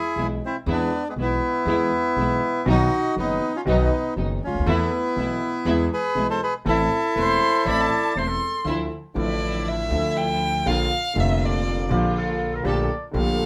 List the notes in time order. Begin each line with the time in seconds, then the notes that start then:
Already playing: E4 G#4
0.16 B1 B2 E3 G#3 B3 E4 G#4
0.45 C4 E4
0.66 E2 E3 G#3 B3 E4 G#4
0.72 D4
1.09 G#3 B3
1.16 B1 B2 E3 G#3 B3 E4 G#4
1.21 B3 E4
1.66 E2 E3 G#3 B3 E4 G#4
2.16 B1 B2 E3 G#3 B3 E4 G#4
2.65 B1 B2 D#3 F#3 B3 D#4 F#4
2.69 D#4 F#4
3.15 F#1 F#2 D#3 F#3 B3 D#4 F#4
3.56 C#4 F4
3.65 B1 B2 D#3 F#3 B3 D#4 F#4
4.16 F#1 F#2 D#3 F#3 B3 D#4 F#4
4.44 C#2 C#4 F4
4.54 D2
4.59 D#2
4.66 E2 E3 A3 B3 E4 A4
4.71 E4
5.16 B1 B2 E3 A3 B3 E4 A4
5.65 E2 E3 G#3 B3 E4 G#4
5.93 G#4 B4
6.15 B1 B2 E3 G#3 B3 E4 G#4
6.30 A4 C5
6.43 G#4 B4
6.65 A1 A2 E3 A3 C4 E4 A4
6.69 E4
7.15 E1 E2 E3 A3 C4 E4 A4 C5 C6
7.65 A1 A2 E3 A3 C4 E4 A4 D5 B5
7.81 A5
8.15 E1 E2 E3 A3 C4 E4 A4 C5 C6
8.28 A4
8.64 D2 D3 F3 A3 D4 E4
9.14 A1 A2 D3 F3 A3 D4 E4 D5
9.68 E5
9.89 D2 D3 F3 A3 D4 E4
9.93 E4
10.17 G5
10.66 A#1 A#2 D3 F3 A#3 D4 F4 F5
11.14 F1 F2 D3 F3 A#3 D4 F4
11.18 F4 E5
11.45 D5
11.88 A#1 A#2 D3 F3 A#3 D4 F4
11.92 G4
12.18 A4
12.55 A#4
12.63 A#1 A#2 D3 A3 A#3 G4 A4 D5
13.11 A#1 A#2 D3 A3 A#3 G4 A4
13.16 G4 F5